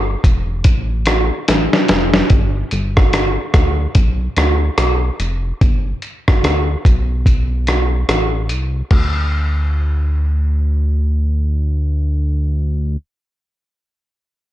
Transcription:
Already playing: analog synth bass G1
0.24 analog synth bass E1, kick, closed hi-hat
0.64 analog synth bass A1, kick, closed hi-hat
1.06 cross-stick, closed hi-hat
1.48 analog synth bass A1, snare, closed hi-hat
1.73 snare
1.88 analog synth bass F1, snare, closed hi-hat
2.14 snare
2.30 analog synth bass G1, kick, closed hi-hat
2.71 analog synth bass G1, closed hi-hat
2.97 kick, cross-stick
3.13 cross-stick, closed hi-hat
3.54 analog synth bass D2, kick, cross-stick, closed hi-hat
3.95 analog synth bass B1, kick, closed hi-hat
4.37 analog synth bass D2, cross-stick, closed hi-hat
4.78 analog synth bass B1, cross-stick, closed hi-hat
5.20 analog synth bass F1, closed hi-hat
5.61 analog synth bass G1, kick, closed hi-hat
6.02 closed hi-hat
6.28 analog synth bass G1, kick, cross-stick
6.43 analog synth bass D2, cross-stick, closed hi-hat
6.85 analog synth bass B1, kick, closed hi-hat
7.26 kick, closed hi-hat
7.67 cross-stick, closed hi-hat
8.09 analog synth bass A1, cross-stick, closed hi-hat
8.49 analog synth bass C2, closed hi-hat
8.91 analog synth bass D2, kick, crash

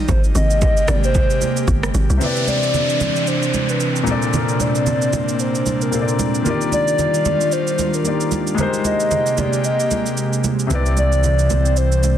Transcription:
0.09 log drum bass G#1, analog synth pad C3 G#3 A#3 G4, soft synth lead C5, kick, low conga, shaker
0.24 shaker
0.35 log drum bass G#1, soft synth lead D#5, high conga, shaker
0.50 shaker
0.62 soft synth lead D#5, kick, low conga, shaker
0.77 shaker
0.88 log drum bass G#1, soft synth lead D5, cross-stick, high conga, low conga, shaker
1.04 soft synth lead C5, shaker
1.15 kick, low conga, shaker
1.30 shaker
1.41 high conga, shaker
1.57 shaker
1.68 log drum bass G1, kick, high conga, shaker
1.83 cross-stick, shaker
1.94 log drum bass G#1, high conga, shaker
2.10 log drum bass C2, shaker
2.17 grand piano C3 C4, analog synth pad C3 E3 C4 D4, downlifter, low conga, shaker
2.21 grand piano E4 G4, soft synth lead B4
2.25 grand piano D5
2.36 shaker
2.47 soft synth lead D5, high conga, shaker
2.63 shaker
2.74 low conga, shaker
2.89 shaker
3.01 high conga, low conga, shaker
3.16 shaker
3.27 soft synth lead C5, shaker
3.43 shaker
3.54 high conga, shaker
3.69 soft synth lead B4, shaker
3.80 shaker
3.96 shaker
4.03 grand piano A#2 A#3, analog synth pad A#3 C4 D4, high conga, shaker
4.07 grand piano C4 A4
4.11 grand piano D5
4.22 shaker
4.33 soft synth lead A#4, low conga, shaker
4.49 shaker
4.60 soft synth lead D5, high conga, shaker
4.75 shaker
4.86 low conga, shaker
5.02 shaker
5.13 high conga, low conga, shaker
5.29 shaker
5.34 soft synth lead D5
5.40 soft synth lead C5, shaker
5.55 shaker
5.66 high conga, shaker
5.81 soft synth lead A#4, shaker
5.91 grand piano A#2 A#3 C4 A4 C5, shaker
6.01 grand piano D5
6.08 shaker
6.19 high conga, shaker
6.35 shaker
6.42 grand piano D#3 A#3, analog synth pad D#3 G3 F4, low conga, shaker
6.46 grand piano F4 G4 D5, soft synth lead A#4
6.61 shaker
6.72 soft synth lead D5, high conga, shaker
6.88 shaker
6.99 low conga, shaker
7.14 shaker
7.25 high conga, low conga, shaker
7.41 shaker
7.52 soft synth lead C5, shaker
7.67 shaker
7.79 high conga, shaker
7.94 soft synth lead A#4, shaker
8.03 grand piano D#3 A#3 F4 G4, shaker
8.07 grand piano D5
8.21 shaker
8.32 high conga, shaker
8.47 shaker
8.55 analog synth pad C3 G#3 A#3 G4, grand piano G#3 D#4 G4, low conga, shaker
8.59 grand piano A#4 C5, soft synth lead C5
8.73 shaker
8.85 soft synth lead D#5, high conga, shaker
9.00 shaker
9.11 low conga, shaker
9.27 shaker
9.38 soft synth lead D5, high conga, low conga, shaker
9.53 shaker
9.64 soft synth lead D#5, shaker
9.80 shaker
9.91 high conga, shaker
10.06 shaker
10.17 shaker
10.33 shaker
10.44 high conga, shaker
10.59 shaker
10.67 fingered electric bass C2, grand piano C3 C4 E4, analog synth pad E3 C4, low conga, shaker
10.71 grand piano G4 D5, soft synth lead B4
10.86 shaker
10.97 soft synth lead D5, high conga, shaker
11.12 shaker
11.24 low conga, shaker
11.39 shaker
11.50 high conga, low conga, shaker
11.66 shaker
11.77 soft synth lead C5, shaker
11.92 shaker
12.03 high conga, shaker

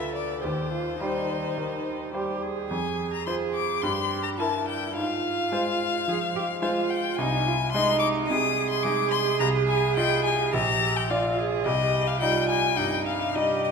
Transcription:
Already playing: grand piano D2 F4 B4, cello A4, violin E5
0.15 violin D5
0.44 grand piano D#2, cello G4, violin C5
0.72 cello F4
1.00 grand piano G3 G4 C5, cello D#4
1.58 grand piano D#3
2.14 grand piano G3 G4 C5, cello G4
2.43 cello G#4
2.70 grand piano F2, violin G#5
3.13 violin A#5
3.26 grand piano F4 C5, cello G#4, violin C6
3.54 violin D6
3.82 grand piano G2, cello G4, violin C6
4.23 violin A#5
4.38 grand piano E4 A#4, cello E4, violin A5
4.68 violin G5
4.96 grand piano G#2, cello F4, violin F5
5.52 grand piano G#3 F4 C5
6.08 grand piano F3, cello G#4
6.36 cello G4
6.62 grand piano G#3 F4 C5, cello F4, violin F5
6.90 violin G5
7.16 grand piano C2, cello D#4, violin G#5
7.47 cello F4
7.72 grand piano G#3 D#4 D#5, cello D#4, violin C6
7.99 violin D6
8.28 grand piano C3, cello G#4, violin D#6
8.70 violin C6
8.83 grand piano G#3 D#4 D#5, violin D6
9.11 violin C6
9.40 grand piano C2, violin A#5
9.68 violin G#5
9.96 grand piano F4 D#5, violin G5
10.25 violin G#5
10.53 grand piano A#1, cello G4, violin A#5
10.96 violin G5
11.10 grand piano F4 D5, cello F4, violin F5
11.38 cello G#4
11.65 grand piano C2, cello G4, violin D#5
12.07 violin F5
12.20 grand piano G3 D#4 D#5, cello F4, violin G5
12.49 violin G#5
12.77 grand piano G2, cello D#4, violin G5
13.06 violin F5
13.35 grand piano G3 D#4 D#5, cello G4, violin D#5
13.64 violin D#5

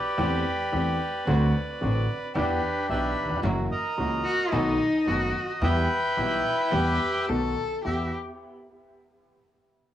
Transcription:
Already playing: bandoneon G4 B4 D5
0.18 grand piano E2 E3 A3 C4 G4, upright bass E2, string section A3 C4 G4
0.72 grand piano E2 E3 A3 C4 G4, upright bass E2, string section A3 C4 G4
1.27 upright bass D2, grand piano D2 D3 A3 C4 F#4, string section C4 D4 F#4
1.81 grand piano A1 A2 D3 A3 C4 F#4, upright bass A1, string section C4 D4 F#4
2.35 upright bass E2, grand piano E2 E3 B3 D4 G4, string section D4 E4 G4, bandoneon D4 G4 B4
2.89 upright bass B1, grand piano B1 B2 E3 B3 D4 G4, string section D4 E4 G4, bandoneon G4 B4 E5
3.23 grand piano D#2
3.30 grand piano E2
3.37 grand piano F2
3.43 upright bass F#1, grand piano F#2 E3 F#3 A#3 C#4 F#4, string section A#3 E4 F#4
3.71 bandoneon A#4 D#5
3.98 upright bass C#2, grand piano C#2 C#3 E3 A#3 C#4 F#4, string section A#3 E4 F#4
4.25 cello F#4
4.52 upright bass B1, grand piano B1 B2 D#3 A3 B3 F#4, string section B3 D#4 A4, cello D#4
5.07 upright bass F#1, grand piano F#1 F#2 D#3 A3 B3 F#4, string section B3 D#4 A4, cello F#4
5.62 upright bass E2, grand piano E2 E3 G3 B3 G4, string section B3 E4 G4, bandoneon B4 E5 G5
6.17 upright bass B1, grand piano B1 B2 E3 G3 B3 G4, string section B3 E4 G4, cello E4
6.72 grand piano E2 E3 G3 B3 G4, upright bass E2, string section B3 E4 G4, cello G4
7.29 upright bass B1, grand piano B1 B2 D#3 A3 B3 F#4, string section B3 D#4 A4, cello A4
7.85 grand piano E2 B3 E4 G4, upright bass E2, string section B3 E4 G4, cello G4, bandoneon E5

